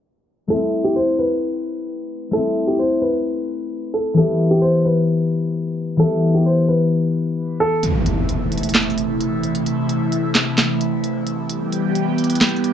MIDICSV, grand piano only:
0, 0, Header, 1, 2, 480
1, 0, Start_track
1, 0, Tempo, 458015
1, 527, Time_signature, 4, 2, 24, 8
1, 13342, End_track
2, 0, Start_track
2, 0, Title_t, "Grand piano"
2, 0, Program_c, 0, 0
2, 525, Note_on_c, 0, 69, 90
2, 864, Note_off_c, 0, 69, 0
2, 884, Note_on_c, 0, 67, 80
2, 999, Note_off_c, 0, 67, 0
2, 1006, Note_on_c, 0, 72, 89
2, 1234, Note_off_c, 0, 72, 0
2, 1246, Note_on_c, 0, 71, 81
2, 2404, Note_off_c, 0, 71, 0
2, 2444, Note_on_c, 0, 69, 105
2, 2784, Note_off_c, 0, 69, 0
2, 2803, Note_on_c, 0, 67, 75
2, 2918, Note_off_c, 0, 67, 0
2, 2924, Note_on_c, 0, 72, 82
2, 3153, Note_off_c, 0, 72, 0
2, 3163, Note_on_c, 0, 71, 81
2, 4083, Note_off_c, 0, 71, 0
2, 4127, Note_on_c, 0, 69, 75
2, 4354, Note_off_c, 0, 69, 0
2, 4374, Note_on_c, 0, 69, 85
2, 4709, Note_off_c, 0, 69, 0
2, 4725, Note_on_c, 0, 67, 75
2, 4839, Note_on_c, 0, 72, 91
2, 4840, Note_off_c, 0, 67, 0
2, 5070, Note_off_c, 0, 72, 0
2, 5087, Note_on_c, 0, 71, 80
2, 6245, Note_off_c, 0, 71, 0
2, 6283, Note_on_c, 0, 69, 109
2, 6623, Note_off_c, 0, 69, 0
2, 6650, Note_on_c, 0, 67, 73
2, 6762, Note_off_c, 0, 67, 0
2, 6771, Note_on_c, 0, 72, 87
2, 6997, Note_off_c, 0, 72, 0
2, 7007, Note_on_c, 0, 71, 79
2, 7925, Note_off_c, 0, 71, 0
2, 7967, Note_on_c, 0, 69, 88
2, 8194, Note_off_c, 0, 69, 0
2, 13342, End_track
0, 0, End_of_file